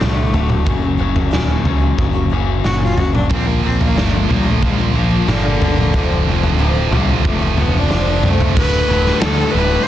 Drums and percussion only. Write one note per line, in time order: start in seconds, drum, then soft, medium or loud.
0.01 snare medium
0.01 mid tom medium
0.34 floor tom medium
0.50 mid tom medium
0.66 kick loud
0.66 floor tom medium
1.16 floor tom medium
1.33 snare medium
1.65 floor tom medium
1.98 kick loud
1.98 floor tom medium
2.64 snare medium
2.64 mid tom medium
2.97 floor tom medium
3.15 mid tom medium
3.31 kick loud
3.31 floor tom medium
3.81 floor tom medium
3.98 snare medium
4.31 floor tom medium
4.31 mid tom medium
4.63 kick loud
4.63 floor tom medium
5.28 snare medium
5.28 mid tom medium
5.62 floor tom medium
5.78 mid tom medium
5.94 kick loud
5.94 floor tom medium
6.43 floor tom medium
6.92 floor tom medium
6.92 mid tom medium
7.25 kick loud
7.25 floor tom medium
7.58 floor tom medium
7.91 snare medium
8.23 mid tom medium
8.40 floor tom medium
8.57 kick loud
8.57 crash loud
9.06 snare soft
9.21 snare loud
9.21 ride bell medium